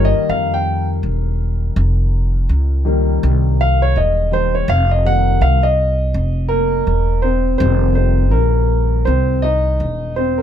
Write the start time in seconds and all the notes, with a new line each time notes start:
Already playing: G1 D#3 G3 A#3
0.05 D#5
0.14 muted upright bass stroke
0.29 F2 F5
0.54 G5
1.03 E1
1.76 F1
2.49 C#2
2.85 D#3 G3 A#3
3.23 C2
3.61 F5
3.82 C#5
3.96 E1 D#5
4.32 D#3 G3 A#3 C5
4.55 C#5
4.68 F1 F5
4.91 D#5
5.04 D#3 G3 A#3 F#5
5.41 C2 F5
5.63 D#5
6.14 F1
6.49 A#3 A#4
6.87 E1
7.22 C4 C5
7.58 F1 D#3 G3 A#3 C4 C5
7.95 C4 C5
8.31 A#1 A#3 A#4
9.05 C2 C4 C5
9.42 D#4 D#5
9.80 E1
10.16 C4 C5
10.38 A#4